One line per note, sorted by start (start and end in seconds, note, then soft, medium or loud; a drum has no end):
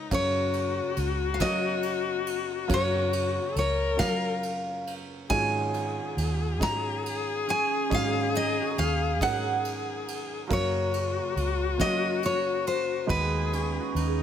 0.00 0.14 G#3 medium
0.00 0.13 D#4 loud
0.00 0.13 D#4 medium
0.00 0.14 F4 medium
0.00 0.12 A#4 medium
0.00 0.12 C#5 medium
0.11 2.66 F#1 medium
0.11 0.79 F#2 loud
0.11 2.66 F#2 medium
0.11 1.00 F#3 medium
0.11 1.00 C#4 medium
0.11 3.57 F#4 loud
0.11 1.01 A#4 medium
0.11 1.01 C#5 medium
0.11 0.95 C#5 medium
0.11 1.00 F5 medium
0.11 kick medium
0.11 ride medium
0.53 ride medium
0.97 1.41 C#2 medium
0.97 ride medium
1.34 1.41 F5 medium
1.39 2.29 F#3 medium
1.39 2.42 F#3 loud
1.39 2.30 C#4 medium
1.39 2.30 A#4 medium
1.39 2.30 C#5 medium
1.39 2.73 D#5 medium
1.39 2.30 F5 medium
1.39 kick medium
1.39 snare medium
1.39 ride medium
1.83 ride medium
2.27 ride medium
2.68 5.25 F#1 medium
2.68 5.25 F#2 medium
2.68 3.38 F#2 loud
2.68 3.58 F#3 medium
2.68 3.58 C#4 medium
2.68 3.58 A#4 medium
2.68 3.59 C#5 medium
2.68 3.58 F5 medium
2.68 kick loud
2.68 ride medium
2.74 3.54 C#5 medium
3.13 ride medium
3.56 4.01 C#2 medium
3.56 4.86 A#4 loud
3.56 3.99 C#5 medium
3.56 ride medium
3.96 4.88 F#3 medium
3.96 5.03 F#3 medium
3.96 4.88 C#4 medium
3.96 4.88 F4 medium
3.96 4.89 A#4 medium
3.96 4.89 C#5 medium
3.96 4.93 F5 loud
3.96 kick medium
3.96 snare medium
3.96 ride medium
4.43 ride medium
4.87 ride soft
5.27 7.87 G#1 medium
5.27 7.87 G#2 medium
5.27 5.99 G#2 medium
5.27 6.20 F#3 medium
5.27 6.20 C#4 medium
5.27 6.20 D#4 medium
5.27 7.82 F4 medium
5.27 10.45 G#4 loud
5.27 6.20 G#4 medium
5.27 6.21 C#5 medium
5.27 6.13 G#5 loud
5.27 kick medium
5.27 ride medium
5.74 ride soft
6.17 6.61 D#2 medium
6.17 ride medium
6.59 7.64 G#2 medium
6.59 7.50 F#3 medium
6.59 7.50 C#4 medium
6.59 7.50 D#4 medium
6.59 7.51 G#4 medium
6.59 7.50 C#5 medium
6.59 7.44 A#5 loud
6.59 kick medium
6.59 snare medium
6.59 ride medium
7.06 ride medium
7.47 10.37 C#4 medium
7.47 7.93 G#5 medium
7.47 ride soft
7.89 10.46 G#1 medium
7.89 10.46 G#2 medium
7.89 8.59 G#2 medium
7.89 8.80 F#3 medium
7.89 8.80 C#4 medium
7.89 8.80 D#4 medium
7.89 8.80 G#4 medium
7.89 8.81 C#5 medium
7.89 kick loud
7.89 ride medium
7.95 8.36 F5 medium
8.34 11.05 D#4 medium
8.34 8.79 D#5 loud
8.34 ride medium
8.61 11.05 F#4 medium
8.78 9.21 D#2 medium
8.78 9.18 F5 medium
8.78 ride medium
9.21 10.23 G#2 loud
9.21 10.10 F#3 medium
9.21 10.10 C#4 medium
9.21 10.10 D#4 medium
9.21 10.11 G#4 medium
9.21 10.11 A#4 medium
9.21 10.15 F#5 loud
9.21 kick medium
9.21 snare medium
9.21 ride medium
9.65 ride medium
10.08 ride medium
10.47 13.04 F#1 medium
10.47 13.04 F#2 medium
10.47 11.18 F#2 loud
10.47 11.38 F#3 medium
10.47 11.39 A#3 medium
10.47 11.39 C#4 medium
10.47 13.10 F#4 loud
10.47 11.39 A#4 medium
10.47 11.39 F5 medium
10.47 kick medium
10.47 ride medium
10.53 11.77 C#5 medium
10.93 ride medium
11.36 11.81 C#2 medium
11.36 ride soft
11.77 12.67 F#3 medium
11.77 12.82 F#3 medium
11.77 12.68 A#3 medium
11.77 12.68 C#4 medium
11.77 12.69 C#5 medium
11.77 12.25 D#5 loud
11.77 12.68 F5 medium
11.77 kick medium
11.77 snare medium
11.77 ride medium
12.23 12.67 C#5 medium
12.23 ride medium
12.67 13.07 C5 medium
12.67 ride medium
13.06 14.23 D#2 medium
13.06 13.78 D#2 medium
13.06 14.23 D#3 medium
13.06 13.97 G#3 medium
13.06 13.98 B3 medium
13.06 13.98 D#4 medium
13.06 13.98 F#4 medium
13.06 13.95 G#4 loud
13.06 13.98 B4 medium
13.06 14.23 B4 medium
13.06 kick medium
13.06 ride medium
13.53 14.23 C#4 medium
13.53 ride soft
13.80 14.23 F#4 medium
13.95 14.23 D#2 medium
13.95 14.23 D#4 loud
13.95 ride medium
14.06 14.23 G#4 medium